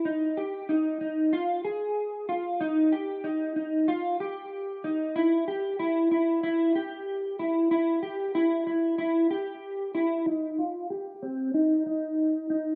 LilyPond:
\new Staff \with { instrumentName = "Clean electric guitar" } { \time 4/4 \key aes \major \tempo 4 = 94 ees'8 g'8 ees'8 ees'8 f'8 aes'4 f'8 | ees'8 g'8 ees'8 ees'8 f'8 g'4 ees'8 | e'8 g'8 e'8 e'8 e'8 g'4 e'8 | e'8 g'8 e'8 e'8 e'8 g'4 e'8 |
ees'8 f'8 g'8 c'8 ees'8 ees'4 ees'8 | }